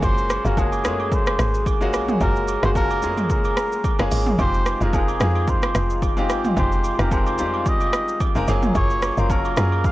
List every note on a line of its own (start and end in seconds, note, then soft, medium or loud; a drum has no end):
0.00 0.39 F#1 loud
0.00 4.35 F#3 medium
0.00 0.30 G#3 loud
0.00 0.30 A#3 medium
0.00 4.35 A#3 medium
0.00 0.30 C#4 medium
0.00 0.30 F4 medium
0.00 0.30 F#4 loud
0.00 4.35 G#4 medium
0.00 kick loud
0.00 high agogo medium
0.00 shaker medium
0.04 0.48 C5 loud
0.18 shaker medium
0.30 cross-stick medium
0.30 high agogo medium
0.30 shaker loud
0.44 0.86 F#1 loud
0.44 0.54 G#3 medium
0.44 0.55 A#3 medium
0.44 0.55 C#4 medium
0.44 0.55 F4 medium
0.44 0.55 F#4 medium
0.44 0.61 A#4 loud
0.44 shaker medium
0.57 0.79 G#3 medium
0.57 0.79 A#3 medium
0.57 0.80 C#4 medium
0.57 0.80 F4 medium
0.57 0.80 F#4 medium
0.57 1.15 G#4 medium
0.57 kick medium
0.57 low woodblock medium
0.57 shaker medium
0.72 high agogo medium
0.72 shaker soft
0.84 1.21 F#2 loud
0.84 1.61 G#3 medium
0.84 0.91 A3 medium
0.84 1.61 C#4 medium
0.84 1.62 F4 medium
0.84 1.62 G#4 medium
0.84 cross-stick loud
0.84 shaker loud
0.91 1.65 A#3 medium
1.00 high agogo medium
1.12 1.67 C5 loud
1.12 kick loud
1.12 shaker medium
1.27 cross-stick loud
1.27 high agogo medium
1.27 shaker soft
1.39 1.95 G#1 medium
1.39 cross-stick loud
1.39 shaker loud
1.54 shaker medium
1.66 kick medium
1.66 high agogo medium
1.66 shaker medium
1.81 2.13 G#3 medium
1.81 2.13 A#3 medium
1.81 2.14 C#4 medium
1.81 2.14 F4 medium
1.81 2.14 F#4 loud
1.81 shaker medium
1.93 2.17 A#1 medium
1.93 cross-stick medium
1.93 high agogo medium
1.93 shaker loud
2.08 mid tom loud
2.08 shaker soft
2.21 2.57 F#1 loud
2.21 2.54 G#3 medium
2.21 2.54 A#3 medium
2.21 2.54 C#4 medium
2.21 2.55 F4 medium
2.21 2.55 F#4 medium
2.21 2.61 A#4 loud
2.21 kick loud
2.21 high agogo medium
2.21 shaker medium
2.36 shaker soft
2.48 high agogo medium
2.48 shaker loud
2.62 3.04 F#1 loud
2.62 2.72 G#3 medium
2.62 2.73 A#3 medium
2.62 2.73 C#4 medium
2.62 2.73 F4 medium
2.62 2.73 F#4 medium
2.62 2.70 C5 loud
2.62 cross-stick medium
2.62 shaker soft
2.75 2.98 G#3 medium
2.75 2.98 A#3 medium
2.75 2.98 C#4 medium
2.75 2.98 F4 medium
2.75 2.98 F#4 medium
2.75 3.27 A#4 loud
2.75 kick medium
2.75 low woodblock medium
2.75 shaker medium
2.90 high agogo medium
2.90 shaker soft
3.02 3.50 F#2 loud
3.02 3.79 G#3 medium
3.02 3.10 A3 medium
3.02 3.80 C#4 medium
3.02 3.80 F4 medium
3.02 3.80 G#4 medium
3.02 shaker loud
3.09 3.83 A#3 medium
3.17 mid tom medium
3.17 high agogo medium
3.17 shaker medium
3.30 4.08 A#4 medium
3.30 kick loud
3.30 shaker medium
3.44 high agogo medium
3.44 shaker soft
3.57 cross-stick loud
3.57 shaker loud
3.72 shaker medium
3.84 kick medium
3.84 high agogo medium
3.84 shaker medium
3.99 4.10 F#1 medium
3.99 4.31 G#3 medium
3.99 4.31 A#3 medium
3.99 4.32 C#4 medium
3.99 4.32 F4 medium
3.99 4.32 G#4 loud
3.99 cross-stick medium
3.99 shaker soft
4.11 4.35 G#1 medium
4.11 open hi-hat medium
4.11 high agogo medium
4.11 shaker loud
4.26 mid tom loud
4.26 shaker soft
4.38 4.75 F1 loud
4.38 8.44 D#3 medium
4.38 4.72 G#3 medium
4.38 8.44 G#3 medium
4.38 4.72 C4 medium
4.38 4.72 D#4 medium
4.38 8.44 F4 medium
4.38 4.72 F4 medium
4.38 4.73 G4 medium
4.38 4.84 C5 loud
4.38 kick loud
4.38 high agogo medium
4.38 shaker medium
4.54 shaker medium
4.66 cross-stick medium
4.66 high agogo medium
4.66 shaker loud
4.81 5.15 F1 loud
4.81 4.91 G#3 medium
4.81 4.91 C4 medium
4.81 4.91 D#4 medium
4.81 4.91 F4 medium
4.81 4.92 G#4 medium
4.81 4.96 A#4 loud
4.81 shaker soft
4.93 5.15 G#3 medium
4.93 5.16 C4 medium
4.93 5.16 D#4 medium
4.93 5.16 F4 medium
4.93 5.51 G#4 loud
4.93 5.16 A#4 medium
4.93 kick medium
4.93 low woodblock medium
4.93 shaker medium
5.08 high agogo medium
5.08 shaker soft
5.20 5.57 F2 loud
5.20 5.97 G#3 medium
5.20 5.97 C4 medium
5.20 5.98 D#4 medium
5.20 5.98 F4 medium
5.20 5.98 G#4 medium
5.20 cross-stick loud
5.20 shaker loud
5.35 high agogo medium
5.48 6.03 C5 loud
5.48 kick loud
5.48 shaker medium
5.62 cross-stick loud
5.62 high agogo medium
5.62 shaker soft
5.75 6.31 F1 loud
5.75 cross-stick loud
5.75 shaker loud
5.90 shaker medium
6.02 kick medium
6.02 high agogo medium
6.02 shaker medium
6.17 6.49 G#3 medium
6.17 6.50 C4 medium
6.17 6.50 D#4 medium
6.17 6.50 F4 medium
6.17 6.50 G4 loud
6.17 shaker soft
6.30 6.53 G#1 loud
6.30 cross-stick medium
6.30 high agogo medium
6.30 shaker loud
6.44 mid tom loud
6.44 shaker medium
6.56 6.93 F1 loud
6.56 6.90 G#3 medium
6.56 6.90 C4 medium
6.56 6.90 D#4 medium
6.56 6.91 F4 medium
6.56 6.91 G4 medium
6.56 7.03 C5 loud
6.56 kick loud
6.56 high agogo medium
6.56 shaker medium
6.72 shaker soft
6.84 high agogo medium
6.84 shaker loud
6.99 7.40 F1 loud
6.99 7.09 G#3 medium
6.99 7.09 C4 medium
6.99 7.09 D#4 medium
6.99 7.10 F4 medium
6.99 7.10 G4 medium
6.99 7.15 A#4 medium
6.99 cross-stick medium
6.99 shaker soft
7.11 7.34 G#3 medium
7.11 7.34 C4 medium
7.11 7.34 D#4 medium
7.11 7.34 F4 medium
7.11 7.35 A#4 medium
7.11 7.69 C5 loud
7.11 kick medium
7.11 low woodblock medium
7.11 shaker medium
7.26 high agogo medium
7.26 shaker soft
7.38 7.86 F2 loud
7.38 7.46 G3 medium
7.38 8.16 C4 medium
7.38 8.16 D#4 medium
7.38 8.16 F4 medium
7.38 8.16 G4 medium
7.38 shaker loud
7.45 8.19 G#3 medium
7.54 high agogo medium
7.66 8.21 D#5 loud
7.66 kick loud
7.66 shaker medium
7.81 high agogo medium
7.81 shaker medium
7.93 cross-stick loud
7.93 shaker loud
8.08 shaker medium
8.20 kick medium
8.20 high agogo medium
8.20 shaker medium
8.35 8.46 F1 medium
8.35 8.48 G#3 medium
8.35 8.48 C4 medium
8.35 8.48 D#4 medium
8.35 8.47 F4 medium
8.35 8.49 A#4 loud
8.35 shaker medium
8.47 8.71 F#1 loud
8.47 9.92 A#2 medium
8.47 9.02 F#3 loud
8.47 9.92 G#3 medium
8.47 9.03 A#3 medium
8.47 9.03 C#4 medium
8.47 9.92 F4 medium
8.47 9.03 F4 medium
8.47 9.03 G#4 loud
8.47 high agogo medium
8.47 shaker loud
8.63 mid tom loud
8.63 shaker soft
8.75 9.12 F#1 loud
8.75 9.21 C#5 loud
8.75 kick loud
8.75 high agogo medium
8.75 shaker medium
8.90 shaker medium
9.02 cross-stick medium
9.02 high agogo medium
9.02 shaker loud
9.17 9.52 F#1 loud
9.17 9.27 F#3 medium
9.17 9.27 A#3 medium
9.17 9.28 C#4 medium
9.17 9.28 F4 medium
9.17 9.28 A#4 medium
9.17 9.32 C5 loud
9.17 shaker medium
9.30 9.52 F#3 medium
9.30 9.52 A#3 medium
9.30 9.53 C#4 medium
9.30 9.53 F4 medium
9.30 9.87 A#4 loud
9.30 9.53 A#4 medium
9.30 kick medium
9.30 low woodblock medium
9.30 shaker medium
9.45 high agogo medium
9.45 shaker soft
9.57 9.92 F#2 loud
9.57 9.92 F#3 medium
9.57 9.92 A#3 medium
9.57 9.92 C#4 medium
9.57 9.92 F4 medium
9.57 9.92 G#4 medium
9.57 cross-stick loud
9.57 shaker loud
9.72 high agogo medium
9.84 9.92 F5 loud
9.84 kick loud
9.84 shaker medium